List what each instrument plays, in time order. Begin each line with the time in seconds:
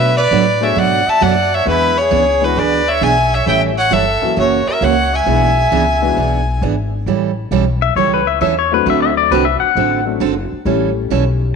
Already playing: upright bass B2, upright piano F#3 A3 B3 D4 F#4, trumpet B4, fiddle E5
0.17 trumpet B4, fiddle D5
0.31 upright bass A2, steel-string acoustic guitar B2 F#3 A3 D4 F#4
0.60 upright piano F#3 A3 B3 D4 G#4, trumpet C#5, fiddle E5
0.75 upright bass G#2, steel-string acoustic guitar B2 F#3 A3 D4 F#4, trumpet D5, fiddle F#5
1.07 trumpet E5, fiddle A5, muted upright bass stroke
1.20 upright bass F#2, steel-string acoustic guitar B2 F#3 A3 D4 F#4, trumpet D5, fiddle F#5
1.54 trumpet C#5, fiddle E5
1.65 upright bass E2, upright piano E3 G#3 B3 D4 E4, steel-string acoustic guitar E3 B3 D4 G#4, trumpet E4, fiddle B4
1.98 trumpet G#4, fiddle C#5
2.11 upright bass C#2, steel-string acoustic guitar E3 B3 D4 G#4
2.40 upright piano E3 G#3 B3 D4 E4, fiddle B4
2.45 trumpet F#4
2.56 upright bass D2, steel-string acoustic guitar E3 B3 D4 G#4, trumpet B4, fiddle D5
2.88 trumpet C#5, fiddle E5
3.01 upright bass B1, steel-string acoustic guitar E3 B3 D4 G#4, trumpet E5, fiddle G#5
3.34 trumpet C#5, fiddle E5
3.46 upright bass A1, upright piano E3 G3 A3 C#4 E4, steel-string acoustic guitar E3 G3 C#4 E4 A4, trumpet E5, fiddle G5
3.78 trumpet C#5, fiddle F#5
3.90 upright bass G1, steel-string acoustic guitar E3 G3 C#4 E4 A4, fiddle E5
3.94 trumpet A4
4.22 upright piano E3 F#3 A#3 C#4 F#4, muted upright bass stroke
4.36 upright bass F#1, steel-string acoustic guitar C#3 E3 A#3 C#4 F#4, trumpet F#4, fiddle C#5
4.67 trumpet A#4, fiddle E5, muted upright bass stroke
4.81 upright bass C#2, steel-string acoustic guitar C#3 E3 A#3 C#4 F#4, fiddle F#5
4.85 trumpet C#5
5.14 trumpet E5, fiddle G#5
5.26 upright bass B1, upright piano E3 G#3 B3 D4 E4, steel-string acoustic guitar E3 B3 D4 G#4
5.71 upright bass C#2, steel-string acoustic guitar E3 B3 D4 G#4
6.02 upright piano E3 G#3 B3 D4 F#4
6.16 upright bass B1, steel-string acoustic guitar E3 B3 D4 G#4
6.62 upright bass G#1, steel-string acoustic guitar E3 B3 D4 G#4
7.06 upright bass A1, steel-string acoustic guitar E3 G3 C#4 E4 A4
7.51 upright bass B1, steel-string acoustic guitar E3 G3 C#4 E4 A4
7.82 pedal steel guitar E5
7.95 upright bass C#2, steel-string acoustic guitar E3 G3 C#4 E4 A4, pedal steel guitar C#5
8.14 pedal steel guitar B4
8.27 pedal steel guitar E5
8.41 upright bass E2, steel-string acoustic guitar E3 G3 C#4 E4 A4, pedal steel guitar E5
8.59 pedal steel guitar C#5
8.71 upright piano F#3 A3 C4 D4 F#4, pedal steel guitar B4
8.86 upright bass D2, steel-string acoustic guitar D3 A3 C4 F#4 A4, pedal steel guitar E5
9.02 pedal steel guitar E5
9.17 pedal steel guitar D5
9.31 upright bass C2, steel-string acoustic guitar D3 A3 C4 F#4 A4, pedal steel guitar B4
9.45 pedal steel guitar E5
9.60 pedal steel guitar F#5, muted upright bass stroke
9.75 upright bass A1, steel-string acoustic guitar D3 A3 C4 F#4 A4
10.05 upright piano F#3 A3 C4 D4 F#4
10.20 upright bass F#1, steel-string acoustic guitar D3 A3 C4 F#4 A4
10.52 muted upright bass stroke
10.65 upright bass A1, steel-string acoustic guitar E3 G3 C#4 E4 A4, upright piano G3 A3 C#4 E4 G4
11.10 upright bass B1, steel-string acoustic guitar E3 G3 C#4 E4 A4